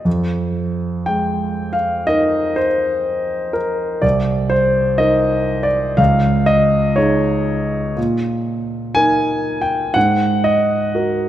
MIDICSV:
0, 0, Header, 1, 2, 480
1, 0, Start_track
1, 0, Tempo, 1010101
1, 29, Time_signature, 4, 2, 24, 8
1, 989, Tempo, 974026
1, 2429, Tempo, 991736
1, 5470, End_track
2, 0, Start_track
2, 0, Title_t, "Grand piano"
2, 0, Program_c, 0, 0
2, 0, Control_c, 0, 64, 127
2, 24, Note_on_c, 0, 41, 39
2, 38, Control_c, 0, 64, 0
2, 104, Control_c, 0, 64, 127
2, 504, Note_on_c, 0, 79, 66
2, 513, Note_on_c, 0, 56, 33
2, 821, Note_on_c, 0, 77, 61
2, 826, Note_off_c, 0, 79, 0
2, 983, Note_on_c, 0, 75, 76
2, 984, Note_off_c, 0, 77, 0
2, 989, Note_on_c, 0, 63, 32
2, 993, Note_on_c, 0, 70, 36
2, 1225, Note_on_c, 0, 72, 70
2, 1230, Note_off_c, 0, 75, 0
2, 1282, Note_off_c, 0, 56, 0
2, 1697, Note_off_c, 0, 70, 0
2, 1704, Note_on_c, 0, 70, 57
2, 1711, Note_off_c, 0, 72, 0
2, 1930, Note_off_c, 0, 41, 0
2, 1932, Note_off_c, 0, 63, 0
2, 1943, Note_on_c, 0, 74, 64
2, 1946, Note_off_c, 0, 70, 0
2, 1947, Note_on_c, 0, 36, 41
2, 1960, Control_c, 0, 64, 0
2, 2022, Control_c, 0, 64, 127
2, 2179, Note_on_c, 0, 72, 70
2, 2184, Note_off_c, 0, 74, 0
2, 2418, Note_on_c, 0, 75, 75
2, 2423, Note_off_c, 0, 72, 0
2, 2423, Note_on_c, 0, 63, 35
2, 2426, Note_on_c, 0, 70, 38
2, 2733, Note_on_c, 0, 74, 64
2, 2741, Note_off_c, 0, 75, 0
2, 2884, Note_off_c, 0, 36, 0
2, 2884, Note_off_c, 0, 63, 0
2, 2886, Note_off_c, 0, 70, 0
2, 2897, Note_on_c, 0, 77, 75
2, 2899, Note_off_c, 0, 74, 0
2, 2901, Note_on_c, 0, 37, 47
2, 2915, Control_c, 0, 64, 0
2, 2995, Control_c, 0, 64, 127
2, 3135, Note_on_c, 0, 75, 79
2, 3141, Note_off_c, 0, 77, 0
2, 3375, Note_on_c, 0, 73, 61
2, 3379, Note_off_c, 0, 75, 0
2, 3382, Note_on_c, 0, 63, 31
2, 3384, Note_on_c, 0, 68, 32
2, 3843, Note_off_c, 0, 37, 0
2, 3844, Note_off_c, 0, 63, 0
2, 3845, Note_off_c, 0, 68, 0
2, 3860, Note_off_c, 0, 73, 0
2, 3862, Note_on_c, 0, 46, 44
2, 3874, Control_c, 0, 64, 0
2, 3954, Control_c, 0, 64, 127
2, 4337, Note_on_c, 0, 80, 87
2, 4345, Note_on_c, 0, 63, 35
2, 4345, Note_on_c, 0, 70, 38
2, 4661, Note_on_c, 0, 79, 68
2, 4662, Note_off_c, 0, 80, 0
2, 4805, Note_off_c, 0, 46, 0
2, 4806, Note_off_c, 0, 63, 0
2, 4806, Note_off_c, 0, 70, 0
2, 4818, Note_on_c, 0, 78, 84
2, 4824, Note_off_c, 0, 79, 0
2, 4827, Note_on_c, 0, 44, 49
2, 4835, Control_c, 0, 64, 0
2, 4914, Control_c, 0, 64, 127
2, 5061, Note_on_c, 0, 75, 74
2, 5062, Note_off_c, 0, 78, 0
2, 5305, Note_on_c, 0, 66, 33
2, 5308, Note_on_c, 0, 70, 37
2, 5470, Note_off_c, 0, 44, 0
2, 5470, Note_off_c, 0, 66, 0
2, 5470, Note_off_c, 0, 70, 0
2, 5470, Note_off_c, 0, 75, 0
2, 5470, End_track
0, 0, End_of_file